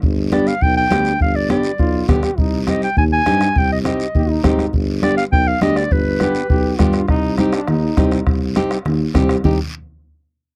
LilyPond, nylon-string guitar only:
\new Staff \with { instrumentName = "Nylon-string guitar" } { \time 4/4 \key c \minor \tempo 4 = 204 r4 <b d' g'>8 r4. <b d' g'>8 r8 | r4 <b d' g'>8 r4. <b d' g'>8 r8 | r4 <c' ees' g'>8 r4. <c' ees' g'>8 r8 | r4 <c' ees' g'>8 r4. <c' ees' g'>8 r8 |
r4 <b d' g'>8 r4. <b d' g'>8 r8 | r4 <b d' g'>8 r4. <b d' g'>8 r8 | r4 <c' ees' g'>8 r4. <c' ees' g'>8 r8 | r4 <c' ees' g'>8 r4. <c' ees' g'>8 r8 |
<c' ees' g'>8 r2. r8 | }